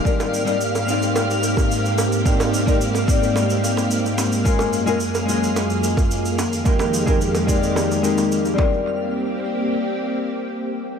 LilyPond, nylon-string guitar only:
\new Staff \with { instrumentName = "Nylon-string guitar" } { \time 4/4 \key aes \lydian \tempo 4 = 109 <g c' d' ees' bes'>8. <g c' d' ees' bes'>16 r8 <g c' d' ees' d''>2~ <g c' d' ees' d''>8 | <g c' d' ees' bes'>8. <g c' d' ees' bes'>16 r8 <g c' d' ees' d''>2~ <g c' d' ees' d''>8 | <aes des' f' ges' bes'>8. <aes des' f' ges' bes'>16 r8 <aes des' f' ges' ees''>2 r8 | <aes c' ees' g' bes'>8. <aes c' ees' g' bes'>16 r8 <aes c' ees' g' d''>4 <aes c' ees' g' bes'>4 <g c' d' ees' bes'>8~ |
<g c' d' ees' bes'>1 | }